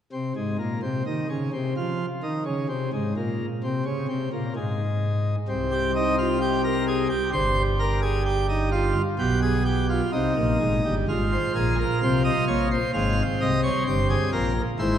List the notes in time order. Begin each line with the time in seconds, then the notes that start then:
0.13 C3
0.36 G#2
0.59 A#2
0.82 C3
1.06 D#3
1.30 C#3
1.53 C3
1.77 F3
2.23 D#3
2.45 C#3
2.69 C3
2.93 G#2
3.17 A#2
3.64 C3
3.85 C#3
4.08 C3
4.33 A#2
4.56 G#2
5.48 C2 C3
5.71 G4
5.95 D#4
6.18 F4
6.41 G4
6.64 A#4
6.88 G#4
7.10 G4
7.33 G1 G2 C5
7.79 A#4
8.02 G#4
8.26 G4
8.49 D#4
8.72 F4
9.19 B1 B2 G4
9.42 G#4
9.65 G4
9.90 F4
10.12 C2 C3 D#4
10.36 A#1 A#2
10.60 G#1 G#2
10.84 G1 G2
11.08 G#1 G#2 F4
11.32 C5
11.55 A#1 A#2 G#4
11.78 A#4
12.03 C2 C3 C5
12.24 D#5
12.47 A#1 A#2 C#5
12.71 C5
12.94 G#1 G#2 C4 F5
13.40 C2 C3 D#5
13.63 C#5
13.87 G1 G2 C5
14.10 G#4
14.32 A#1 A#2 A#4
14.79 G#1 G#2 E4 C5